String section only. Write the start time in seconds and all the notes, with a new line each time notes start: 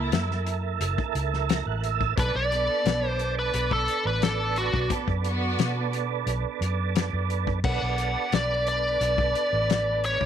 Already playing: A#3 E4
2.17 B3 D4 A4
2.52 B3 A4
4.89 B3 D4 A4
5.25 B3 F#4